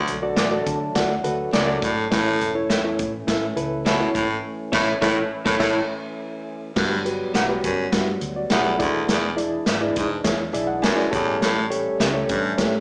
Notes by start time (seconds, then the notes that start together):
Already playing: D2 D3 F#3 A3 D4
0.07 B1, closed hi-hat
0.22 F#4 A4 D5
0.36 A1 D4 F#4 A4 D5, snare, closed hi-hat
0.51 F#4 A4 D5
0.66 D3 A5, kick, closed hi-hat
0.95 D2 F#4 A4 D5 F#5, kick, snare, closed hi-hat
1.24 D2 F#4 A4 B4, closed hi-hat
1.53 C#2 F#2 D4 F#4 A4 D5, snare, closed hi-hat
1.67 F#4 A4 D5
1.82 G#1 A2, kick, closed hi-hat
2.11 A1 A2 E3 A3 C#4 E4 A4 C#5, kick, snare, closed hi-hat
2.41 E1, closed hi-hat
2.55 E4 A4 C#5
2.70 E2 E4 A4 C#5 E5, snare, closed hi-hat
2.84 E4 A4 C#5
2.99 A2, kick, closed hi-hat
3.27 A2 E4 A4 E5, kick, snare, closed hi-hat
3.56 C#2 E4 A4 B4, closed hi-hat
3.85 B2 E4 A4 C#5 E5, snare, closed hi-hat
4.00 E4 A4 C#5
4.15 G#1 A2, kick, closed hi-hat
4.72 A1 A2 E4 A4 C#5 E5, kick, snare, crash
5.01 A1 A2 E4 A4 C#5 E5, kick, snare
5.45 A1 A2 E4 A4 C#5 E5, kick, snare
5.59 A1 A2 E4 A4 C#5 E5, kick, snare, crash
6.76 G1 G2 F#3 G3 B3 F#4 G4 B4, kick, snare, crash
7.05 F#4 G4 B4, closed hi-hat
7.34 B1 D4 G4 B4 F#5, snare, closed hi-hat
7.49 F#4 G4 B4
7.64 G1 F#2, kick, closed hi-hat
7.92 G2 F#4 G4 B4, kick, snare, closed hi-hat
8.21 D2, closed hi-hat
8.36 F#4 D5
8.50 B1 E2 D4 G4 B4 E5 F#5, snare, closed hi-hat
8.65 A4 F#5
8.78 E1 D2 E3 G#3 D4 E4 G#4 D5, kick, closed hi-hat
9.08 E1 E2, snare, closed hi-hat
9.37 E4 G#4 D5, closed hi-hat
9.66 G#1 D4 G#4 B4 E5, snare, closed hi-hat
9.81 E4 G#4 D5
9.96 E1 G#2, kick, closed hi-hat
10.24 E2 E4 G#4 C#5, kick, snare, closed hi-hat
10.53 B1 E4 G#4 D5 E5, closed hi-hat
10.67 F#5
10.82 F#2 D4 G#4 B4 E5 G#5, snare, closed hi-hat
10.96 E4 G#4 D5, snare
11.11 A1 E2 A2 G3 A3 C#4 G4 A4 C#5 A5, kick, closed hi-hat
11.27 G#1
11.41 A1 A2, snare, closed hi-hat
11.70 G4 A4 C#5, closed hi-hat
12.00 C#2 C#4 G4 A4 E5, snare, closed hi-hat
12.13 G4 A4 C#5
12.29 A1 G2, kick, closed hi-hat
12.58 A2 G4 A4 C#5, kick, snare, closed hi-hat